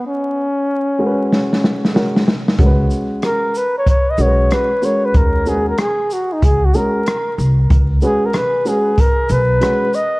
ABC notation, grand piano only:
X:1
M:4/4
L:1/8
Q:"Swing 16ths" 1/4=94
K:D#phr
V:1 name="Grand piano"
z3 [G,CFAB]3 [G,CFA] z | [G,CFAB]3 z2 [G,CFAB] z [G,CFA]- | [G,CFA] [G,CFA] z3 [G,CFA] z2 | z [G,CFB] z [G,CFB] z2 [G,CFG] z |]